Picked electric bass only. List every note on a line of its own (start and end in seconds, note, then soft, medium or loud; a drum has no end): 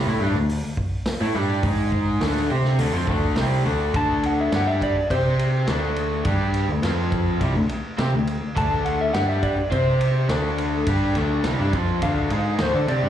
0.07 0.20 A2 loud
0.20 0.34 G2 loud
0.35 0.62 D2 medium
1.21 1.35 A2 medium
1.35 1.62 G2 loud
1.63 2.18 G#2 loud
2.21 2.48 D2 loud
2.51 2.78 C3 medium
2.79 2.93 D2 medium
2.93 3.07 F2 medium
3.08 3.35 D2 loud
3.36 3.63 C2 medium
3.66 3.93 D2 loud
3.94 4.48 D2 medium
4.52 4.92 G2 medium
4.96 muted picked electric bass stroke soft
5.11 5.64 C3 medium
5.68 6.21 D2 medium
6.25 6.65 G2 medium
6.68 6.82 D2 medium
6.82 7.36 F2 medium
7.41 7.54 C2 medium
7.55 7.69 D2 medium
7.70 muted picked electric bass stroke soft
7.99 8.12 C3 loud
8.13 8.39 D2 medium
8.56 9.10 D2 medium
9.14 9.54 G2 medium
9.58 muted picked electric bass stroke soft
9.71 10.25 C3 medium
10.29 10.83 D2 loud
10.87 11.14 G2 medium
11.16 11.42 D2 medium
11.44 11.58 C2 medium
11.59 11.73 G2 medium
11.73 12.00 F2 medium
12.02 12.29 D2 medium
12.30 12.57 G#2 medium
12.59 12.73 D2 medium
12.74 12.88 D3 medium
12.88 13.02 C3 medium
13.03 13.09 G2 medium